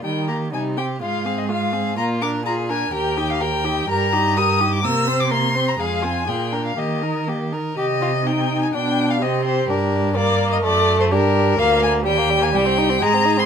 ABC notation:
X:1
M:2/4
L:1/16
Q:1/4=125
K:Eb
V:1 name="Violin"
g2 b2 a2 g2 | f3 e f4 | b2 d'2 b2 a2 | g3 f g4 |
b4 e'3 d' | =e'3 d' c'3 b | f2 a2 g3 f | e4 z4 |
[K:Cm] e4 g3 a | g3 f e2 c2 | B4 d3 e | d3 c B4 |
f2 a2 g3 a | g4 b3 c' |]
V:2 name="Violin"
E2 G2 E2 G2 | F2 A2 F2 A2 | F2 B2 A2 B2 | B2 G2 B2 G2 |
B2 G2 B2 G2 | B2 c2 B2 c2 | A2 F2 A2 B2 | G2 B2 G2 B2 |
[K:Cm] G2 F2 E4 | D4 C4 | D4 B,4 | =A,4 D4 |
B, B, B, B, G, B, G, B, | G, C E C A, C E C |]
V:3 name="Viola"
G,2 B,2 G,2 C2 | A,2 C2 A,2 C2 | B,2 D2 F2 D2 | G2 E2 G2 E2 |
G2 E2 G2 E2 | B,2 C2 B,2 C2 | A,2 C2 F2 D2 | B,2 E2 B,2 E2 |
[K:Cm] G4 E4 | D4 G4- | G4 B4 | =A4 G4 |
B4 G4- | G4 A4 |]
V:4 name="Cello" clef=bass
E,4 C,4 | A,,8 | B,,8 | E,,8 |
G,,8 | C,8 | F,,4 B,,4 | E,6 z2 |
[K:Cm] C,8 | =B,,4 C,4 | G,,8 | ^F,,4 G,,4 |
D,,4 E,,4 | C,,4 A,,4 |]